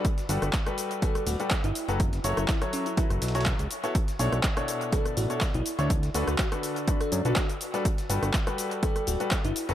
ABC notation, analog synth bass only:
X:1
M:4/4
L:1/16
Q:"Swing 16ths" 1/4=123
K:Glyd
V:1 name="Analog synth bass" clef=bass
z2 G,,, G,,, z6 D,,, z2 G,,, z F,,,- | F,,,2 F,,, F,,, z4 z F,,, B,,,3 C,, z2 | z2 B,,, B,,, z6 A,,, z2 B,,, z D,,- | D,,2 D,, D,, z6 F,, B,,, z4 |
z2 G,,, G,,, z6 D,,, z2 G,,, z F,,, |]